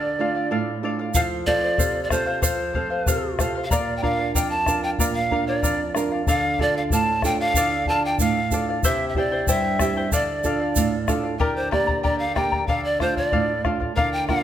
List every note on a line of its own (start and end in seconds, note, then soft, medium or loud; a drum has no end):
0.00 0.49 D3 medium
0.00 0.18 A4 medium
0.00 0.19 D5 medium
0.00 0.79 D5 medium
0.00 0.19 F5 medium
0.19 0.70 A3 soft
0.19 0.71 D4 soft
0.19 0.71 F4 medium
0.19 0.35 A4 medium
0.19 0.35 D5 medium
0.19 0.34 F5 medium
0.35 0.50 D5 soft
0.35 0.51 F5 soft
0.51 1.13 A2 medium
0.51 0.82 A4 medium
0.51 0.83 D5 medium
0.51 0.83 F5 medium
0.83 1.08 A3 soft
0.83 1.09 D4 soft
0.83 1.09 F4 medium
0.83 0.99 A4 medium
0.83 0.99 D5 medium
0.83 0.98 F5 medium
0.99 1.15 D5 soft
0.99 1.15 F5 medium
1.14 1.77 F3 medium
1.14 1.46 A4 medium
1.14 1.46 C5 medium
1.14 1.22 F5 loud
1.14 1.47 F5 medium
1.14 bombo low medium
1.14 shaker medium
1.46 1.98 C4 medium
1.46 1.98 F4 soft
1.46 1.63 A4 medium
1.46 1.99 A4 medium
1.46 1.62 C5 medium
1.46 2.04 D5 loud
1.46 1.61 F5 medium
1.46 bombo low medium
1.62 1.78 C5 soft
1.62 1.78 F5 soft
1.78 2.41 C3 medium
1.78 2.09 A4 medium
1.78 2.10 C5 medium
1.78 2.10 F5 medium
1.78 bombo low medium
1.78 shaker loud
2.04 2.12 D5 medium
2.10 2.63 C4 soft
2.10 2.63 F4 soft
2.10 2.27 A4 medium
2.10 2.63 A4 soft
2.10 2.43 C5 medium
2.10 2.26 C5 medium
2.10 2.25 F5 medium
2.10 bombo rim medium
2.10 bombo low medium
2.10 shaker medium
2.26 2.41 C5 soft
2.26 2.42 F5 soft
2.42 3.05 F3 medium
2.42 2.72 A4 medium
2.42 2.74 C5 medium
2.42 3.36 C5 medium
2.42 2.74 F5 medium
2.42 bombo low medium
2.42 shaker loud
2.74 3.27 C4 soft
2.74 3.27 F4 soft
2.74 2.90 A4 medium
2.74 3.27 A4 soft
2.74 2.90 C5 medium
2.74 2.89 F5 medium
2.74 bombo low medium
2.90 3.06 C5 soft
2.90 3.07 F5 medium
3.06 3.69 C3 medium
3.06 3.38 A4 medium
3.06 3.38 C5 medium
3.06 3.39 F5 medium
3.06 bombo low medium
3.06 shaker loud
3.39 3.65 C4 soft
3.39 3.65 F4 soft
3.39 3.55 A4 medium
3.39 3.65 A4 medium
3.39 3.55 C5 medium
3.39 3.54 F5 medium
3.39 bombo rim medium
3.39 bombo low medium
3.39 shaker medium
3.55 3.72 C5 soft
3.55 3.71 F5 medium
3.64 3.73 F5 medium
3.71 4.33 A#2 medium
3.71 4.01 A#4 medium
3.71 3.98 D5 medium
3.71 4.02 D5 medium
3.71 4.02 F5 medium
3.71 bombo low medium
3.71 shaker loud
3.97 4.05 G5 medium
4.02 4.54 D4 soft
4.02 4.54 F4 soft
4.02 4.19 A#4 medium
4.02 4.54 A#4 medium
4.02 4.19 D5 medium
4.02 4.17 F5 medium
4.02 4.34 F5 medium
4.02 bombo low medium
4.19 4.34 D5 soft
4.19 4.35 F5 soft
4.35 4.97 F2 medium
4.35 4.66 A#4 medium
4.35 4.66 D5 medium
4.35 4.67 F5 medium
4.35 4.52 G5 medium
4.35 bombo low medium
4.35 shaker loud
4.50 4.83 A5 loud
4.66 5.19 D4 medium
4.66 5.19 F4 soft
4.66 4.83 A#4 medium
4.66 5.19 A#4 medium
4.66 4.83 D5 medium
4.66 4.81 F5 medium
4.66 bombo rim soft
4.66 bombo low medium
4.66 shaker medium
4.83 4.99 D5 soft
4.83 4.99 F5 soft
4.83 4.91 G5 loud
4.99 5.61 A#2 medium
4.99 5.30 A#4 medium
4.99 5.31 D5 medium
4.99 5.32 F5 medium
4.99 bombo low medium
4.99 shaker loud
5.15 5.45 F5 medium
5.31 5.83 D4 soft
5.31 5.83 F4 soft
5.31 5.47 A#4 medium
5.31 5.83 A#4 medium
5.31 5.47 D5 medium
5.31 5.46 F5 medium
5.31 bombo low soft
5.47 5.92 D5 medium
5.47 5.62 D5 soft
5.47 5.62 F5 medium
5.62 6.25 F2 medium
5.62 5.94 A#4 medium
5.62 5.95 D5 medium
5.62 5.95 F5 medium
5.62 bombo low medium
5.62 shaker medium
5.95 6.21 D4 soft
5.95 6.21 F4 soft
5.95 6.11 A#4 soft
5.95 6.21 A#4 medium
5.95 6.12 D5 medium
5.95 6.10 F5 medium
5.95 bombo rim medium
5.95 shaker medium
6.12 6.27 D5 soft
6.12 6.27 F5 medium
6.27 6.90 D3 medium
6.27 6.58 A4 medium
6.27 6.59 D5 medium
6.27 6.60 F5 medium
6.27 6.63 F5 medium
6.27 bombo low medium
6.27 shaker medium
6.59 7.11 D4 soft
6.59 7.11 F4 soft
6.59 6.75 A4 medium
6.59 7.11 A4 soft
6.59 6.75 D5 medium
6.59 6.77 D5 medium
6.59 6.74 F5 medium
6.59 bombo low medium
6.75 6.91 D5 soft
6.75 6.91 F5 medium
6.75 6.83 F5 medium
6.90 7.54 A2 medium
6.90 7.23 A4 medium
6.90 7.24 D5 medium
6.90 7.24 F5 medium
6.90 7.22 A5 medium
6.90 bombo low medium
6.90 shaker loud
7.22 7.74 D4 soft
7.22 7.75 F4 soft
7.22 7.40 A4 soft
7.22 7.75 A4 medium
7.22 7.40 D5 medium
7.22 7.39 F5 medium
7.22 7.39 G5 loud
7.22 bombo rim soft
7.22 bombo low medium
7.22 shaker medium
7.40 7.56 D5 soft
7.40 7.56 F5 soft
7.40 7.90 F5 loud
7.54 8.18 D3 medium
7.54 7.88 A4 medium
7.54 7.88 D5 medium
7.54 7.88 F5 medium
7.54 bombo low medium
7.54 shaker loud
7.86 8.39 D4 soft
7.86 8.39 F4 soft
7.86 8.39 A4 medium
7.86 8.04 A4 medium
7.86 8.05 D5 medium
7.86 8.07 A5 loud
7.86 bombo low medium
7.91 8.04 F5 medium
8.05 8.20 D5 soft
8.05 8.20 F5 soft
8.05 8.20 G5 medium
8.18 8.82 A2 medium
8.18 8.51 A4 medium
8.18 8.52 D5 medium
8.18 8.65 F5 medium
8.18 8.52 F5 medium
8.18 bombo low medium
8.18 shaker medium
8.51 8.77 D4 soft
8.51 8.77 F4 soft
8.51 8.78 A4 medium
8.51 8.68 A4 medium
8.51 8.69 D5 medium
8.51 8.68 F5 medium
8.51 bombo low medium
8.51 shaker medium
8.69 8.84 D5 soft
8.69 8.84 F5 medium
8.83 9.46 C3 medium
8.83 9.16 E4 medium
8.83 9.16 G4 medium
8.83 9.16 C5 medium
8.83 9.15 E5 medium
8.83 9.08 E5 medium
8.83 9.16 G5 medium
8.83 bombo low medium
8.83 shaker medium
9.09 9.19 E5 medium
9.15 9.67 C4 soft
9.15 9.67 E4 soft
9.15 9.32 E4 medium
9.15 9.68 G4 medium
9.15 9.31 C5 medium
9.15 9.51 D5 medium
9.15 9.32 E5 medium
9.15 9.31 G5 medium
9.15 bombo low medium
9.32 9.48 E4 soft
9.32 9.48 C5 medium
9.32 9.48 G5 medium
9.47 10.10 G2 medium
9.47 9.80 E4 medium
9.47 9.80 G4 medium
9.47 9.80 C5 medium
9.47 9.79 E5 medium
9.47 10.15 E5 medium
9.47 9.80 G5 medium
9.47 bombo low medium
9.47 shaker loud
9.79 10.05 C4 medium
9.79 10.05 E4 soft
9.79 9.96 E4 medium
9.79 10.06 G4 medium
9.79 9.97 C5 medium
9.79 9.96 E5 medium
9.79 9.96 G5 medium
9.79 bombo rim medium
9.79 bombo low medium
9.79 shaker medium
9.97 10.12 E4 soft
9.97 10.13 C5 soft
9.97 10.12 G5 medium
10.12 10.74 D3 medium
10.12 10.43 A4 medium
10.12 10.44 D5 medium
10.12 11.09 D5 medium
10.12 10.45 F5 medium
10.12 bombo low medium
10.12 shaker medium
10.43 10.95 D4 soft
10.43 10.95 F4 soft
10.43 10.96 A4 medium
10.43 10.60 A4 medium
10.43 10.60 D5 medium
10.43 10.59 F5 medium
10.43 bombo low soft
10.43 shaker medium
10.60 10.76 D5 soft
10.60 10.76 F5 soft
10.76 11.38 A2 medium
10.76 11.07 A4 medium
10.76 11.07 D5 medium
10.76 11.08 F5 medium
10.76 bombo low medium
10.76 shaker medium
11.08 11.34 D4 soft
11.08 11.34 F4 soft
11.08 11.24 A4 medium
11.08 11.34 A4 medium
11.08 11.23 D5 medium
11.08 11.22 F5 medium
11.08 bombo rim medium
11.08 bombo low medium
11.08 shaker medium
11.23 11.39 D5 soft
11.23 11.39 F5 soft
11.39 12.03 D3 medium
11.39 11.72 G4 medium
11.39 11.58 A#4 medium
11.39 11.70 A#4 medium
11.39 11.71 D5 medium
11.39 11.70 G5 medium
11.39 11.71 A#5 medium
11.39 bombo low medium
11.56 11.71 C5 medium
11.71 12.24 A#3 soft
11.71 12.24 D4 soft
11.71 12.24 G4 medium
11.71 11.88 A#4 medium
11.71 12.02 D5 medium
11.71 11.87 D5 medium
11.71 11.88 G5 medium
11.71 11.86 A#5 medium
11.71 bombo rim medium
11.71 bombo low medium
11.87 12.02 A#4 soft
11.87 12.03 D5 soft
11.87 12.03 A#5 medium
11.87 bombo low medium
12.03 12.67 D3 medium
12.03 12.36 G4 medium
12.03 12.35 A#4 medium
12.03 12.18 D5 medium
12.03 12.35 D5 medium
12.03 12.34 G5 medium
12.03 12.36 A#5 medium
12.03 bombo low medium
12.19 12.37 F5 medium
12.35 12.62 A#3 soft
12.35 12.62 D4 soft
12.35 12.62 G4 soft
12.35 12.52 A#4 medium
12.35 12.51 D5 medium
12.35 12.52 G5 medium
12.35 12.67 G5 medium
12.35 12.51 A#5 medium
12.35 bombo rim medium
12.35 bombo low soft
12.52 12.68 A#4 soft
12.52 12.68 D5 soft
12.52 12.68 A#5 soft
12.52 bombo low soft
12.67 13.31 D3 medium
12.67 12.99 A4 medium
12.67 13.00 D5 medium
12.67 12.83 F5 medium
12.67 13.01 F5 medium
12.67 bombo low medium
12.85 13.02 D5 medium
13.00 13.52 A3 soft
13.00 13.52 D4 soft
13.00 13.53 F4 medium
13.00 13.17 A4 medium
13.00 13.17 C5 medium
13.00 13.17 D5 medium
13.00 13.15 F5 medium
13.00 bombo rim soft
13.00 bombo low soft
13.17 13.62 D5 medium
13.17 13.31 D5 soft
13.17 13.32 F5 medium
13.17 bombo low soft
13.32 13.95 A2 medium
13.32 13.63 A4 medium
13.32 13.64 D5 medium
13.32 13.64 F5 medium
13.32 bombo low medium
13.64 13.91 A3 soft
13.64 13.91 D4 soft
13.64 13.92 F4 medium
13.64 13.81 A4 medium
13.64 13.80 D5 medium
13.64 13.79 F5 medium
13.64 bombo rim medium
13.64 bombo low medium
13.80 13.96 D5 soft
13.80 13.96 F5 soft
13.80 bombo low medium
13.96 14.43 D3 medium
13.96 14.27 A#4 medium
13.96 14.28 D5 medium
13.96 14.12 F5 medium
13.96 14.29 F5 medium
13.96 bombo low medium
14.13 14.27 G5 medium
14.28 14.43 A#3 soft
14.28 14.43 D4 soft
14.28 14.43 F4 medium
14.28 14.43 A#4 medium
14.28 14.43 D5 medium
14.28 14.43 F5 loud
14.28 14.43 F5 medium
14.28 bombo rim medium
14.28 bombo low medium